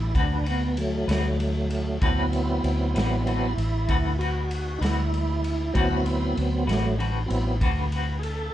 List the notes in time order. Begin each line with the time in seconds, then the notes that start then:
Already playing: A1 E4
0.15 D2 D3 C4 D4 F#4 B4, kick, ride
0.44 C4 F#4 B4, ride
0.48 B3
0.77 F#3 A3, ride
1.08 D2 C4 F#4 B4, snare, ride
1.40 ride
1.70 ride
2.01 D2 D3 F#3 B3 C4 E4 F#4 B4, kick, ride
2.33 ride
2.64 D2, ride
2.95 A1 C4 F#4 B4, snare, ride
3.23 D3 F#3 B3 C4 E4, ride
3.28 C4 F#4 B4
3.57 A1, ride
3.87 D2 D3 C4 F#4 B4, kick, ride
4.19 C4 F#4 B4, ride
4.51 ride
4.78 D2 D#4 F#4 B4, ride
4.83 C4 E4, snare
5.14 ride
5.44 ride
5.74 D2 D3 F#3 B3 C4 E4 F#4 B4, kick, ride
6.06 E4, ride
6.35 D2 A#3 B3, ride
6.65 A1 F#3 A3 F#4 B4, ride
6.70 C4, snare
6.98 D3 C4 F#4 B4, ride
7.26 A1 F#3 B3 C4 E4
7.30 ride
7.61 D2 D3 C4 F#4 B4, kick, ride
7.92 C4 F#4 B4, ride
8.19 G#4
8.23 A4, ride